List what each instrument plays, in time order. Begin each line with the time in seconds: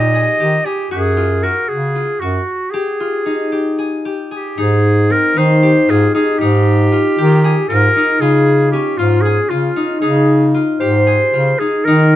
Already playing: bass clarinet A#2, harp D#4 F4 G4, clarinet D#5
0.14 harp G#4
0.40 bass clarinet D#3, harp G4
0.65 clarinet G4, harp G#4
0.91 bass clarinet F#2, harp F#4, clarinet G#4
1.17 harp F4
1.43 harp F#4, clarinet A#4
1.68 bass clarinet C#3, clarinet G#4
1.95 harp F4
2.20 bass clarinet F#2, clarinet F#4, harp F#4
2.71 harp G4, clarinet G#4
3.00 harp F4
3.26 harp D#4
3.52 harp G4
3.78 harp G#4
4.05 harp G4
4.31 clarinet G4, harp G#4
4.58 bass clarinet G#2, harp D#4, clarinet G#4
5.10 harp C4, clarinet A#4
5.36 bass clarinet D#3, harp D#4, clarinet C5
5.63 harp G4
5.89 bass clarinet G#2, harp F4, clarinet G#4
6.15 harp D#4, clarinet G#4
6.38 bass clarinet G#2, harp D#4, clarinet G4
6.92 harp F4
7.18 bass clarinet D#3, harp G4
7.44 harp G#4
7.68 bass clarinet G#2, harp F4, clarinet A#4
7.96 harp D#4
8.20 bass clarinet C#3, harp F4, clarinet G#4
8.71 harp C#4, clarinet G4
8.97 bass clarinet G#2, clarinet F4, harp F4
9.21 clarinet G#4, harp G#4
9.49 bass clarinet C#3, clarinet F4, harp F4
9.76 harp D#4
10.00 bass clarinet C#3, harp D#4, clarinet G#4
10.54 harp F4
10.80 bass clarinet G#2, harp G4, clarinet C5
11.07 harp G#4
11.34 bass clarinet C#3, harp F4
11.59 harp D#4, clarinet G#4
11.84 bass clarinet D#3, harp D#4, clarinet A#4